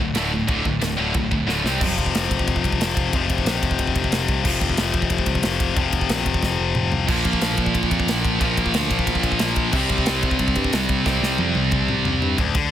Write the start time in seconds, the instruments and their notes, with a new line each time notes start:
0.00 picked electric bass D1, distorted electric guitar D2 A2
0.15 picked electric bass D1, distorted electric guitar D2 A2 D3, snare, ride bell
0.32 distorted electric guitar D2 A2
0.48 picked electric bass D1, distorted electric guitar D2 A2 D3, kick, ride bell
0.65 picked electric bass D1, distorted electric guitar D2 A2, kick
0.81 picked electric bass D1, distorted electric guitar D2 A2, snare, ride bell
0.97 picked electric bass D1, distorted electric guitar D2 A2 D3
1.14 picked electric bass D1, distorted electric guitar D2 A2, kick, ride bell
1.31 picked electric bass D1, distorted electric guitar D2 A2, kick
1.47 picked electric bass D1, distorted electric guitar D2 A2 D3, snare
1.64 picked electric bass C2, distorted electric guitar C3 G3 C4, snare
1.80 picked electric bass F1, distorted electric guitar F2 C3 F3, kick, crash
1.98 picked electric bass F1, kick, ride
2.06 kick
2.14 picked electric bass F1, snare, ride
2.30 picked electric bass F1, kick, ride
2.39 kick
2.48 picked electric bass F1, kick, ride
2.56 kick
2.64 picked electric bass C2, kick, ride
2.72 kick
2.80 picked electric bass F1, snare, ride
2.97 picked electric bass F1, kick, ride
3.13 picked electric bass F1, distorted electric guitar F2 C3 F3, kick, ride
3.30 picked electric bass F1, kick, ride
3.38 kick
3.45 picked electric bass A#1, snare, ride
3.63 picked electric bass F1, kick, ride
3.71 kick
3.79 picked electric bass F1, kick, ride
3.87 kick
3.95 picked electric bass F1, kick, ride
4.04 kick
4.12 picked electric bass F1, snare, ride
4.28 picked electric bass C2, kick, ride
4.43 picked electric bass F1, distorted electric guitar F2 C3, kick, crash
4.47 distorted electric guitar F3
4.61 picked electric bass F1, kick, ride
4.69 kick
4.77 picked electric bass F1, snare, ride
4.94 picked electric bass F1, kick, ride
5.02 kick
5.10 picked electric bass F1, kick, ride
5.18 kick
5.26 picked electric bass C2, kick, ride
5.35 kick
5.43 picked electric bass F1, snare, ride
5.60 kick, ride
5.75 picked electric bass F1, distorted electric guitar F2 C3 F3, kick, ride
5.93 picked electric bass F1, kick, ride
6.01 kick
6.09 picked electric bass A#1, snare, ride
6.26 picked electric bass F1, kick, ride
6.34 kick
6.43 picked electric bass F1, kick, snare
6.59 picked electric bass F1
6.75 picked electric bass F1, mid tom
6.92 picked electric bass C2, floor tom
7.07 picked electric bass A#1, distorted electric guitar A#2 F3, kick, crash, splash
7.11 distorted electric guitar A#3
7.25 picked electric bass A#1, kick, ride
7.33 kick
7.41 picked electric bass A#1, snare, ride
7.57 picked electric bass A#1, kick, ride
7.66 kick
7.74 picked electric bass A#1, kick, ride
7.83 kick
7.91 picked electric bass F2, kick, ride
8.00 kick
8.07 picked electric bass A#1, snare, ride
8.25 picked electric bass A#1, kick, ride
8.40 picked electric bass A#1, distorted electric guitar A#2 F3 A#3, kick, ride
8.57 picked electric bass A#1, kick, ride
8.66 kick
8.74 picked electric bass D2, snare, ride
8.91 picked electric bass A#1, kick, ride
8.99 kick
9.07 picked electric bass A#1, kick, ride
9.15 kick
9.23 picked electric bass A#1, kick, ride
9.32 kick
9.39 picked electric bass A#1, snare, ride
9.56 picked electric bass A#1, kick, ride
9.73 picked electric bass C2, distorted electric guitar C3 G3 C4, kick, crash
9.89 picked electric bass C2, kick, ride
9.98 kick
10.06 picked electric bass C2, snare, ride
10.23 picked electric bass C2, kick, ride
10.31 kick
10.39 picked electric bass C2, kick, ride
10.48 kick
10.56 picked electric bass G2, kick, ride
10.64 kick
10.73 picked electric bass C2, snare, ride
10.89 picked electric bass C2, kick, ride
11.06 picked electric bass C2, distorted electric guitar C3 G3 C4, kick, snare
11.22 picked electric bass C2, snare
11.38 picked electric bass F2, high tom
11.55 picked electric bass C2, high tom
11.71 picked electric bass C2, kick, mid tom
11.88 picked electric bass C2, mid tom
12.05 picked electric bass C2, floor tom
12.22 picked electric bass G2, floor tom
12.38 picked electric bass D1, distorted electric guitar D2, kick, ride
12.55 picked electric bass D2, distorted electric guitar D3, kick, ride